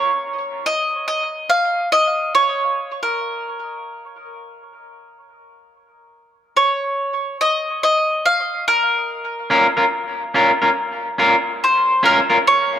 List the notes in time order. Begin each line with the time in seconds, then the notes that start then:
Already playing: C#5
0.66 D#5
1.08 D#5
1.50 F5
1.92 D#5
2.35 C#5
3.03 A#4
6.57 C#5
7.41 D#5
7.83 D#5
8.26 F5
8.68 A#4
9.50 C#4 F4 A#4
9.77 C#4 F4 A#4
10.34 C#4 F4 A#4
10.62 C#4 F4 A#4
11.18 C#4 F4 A#4
11.64 C5
12.03 C#4 F4 A#4
12.30 C#4 F4 A#4
12.47 C#5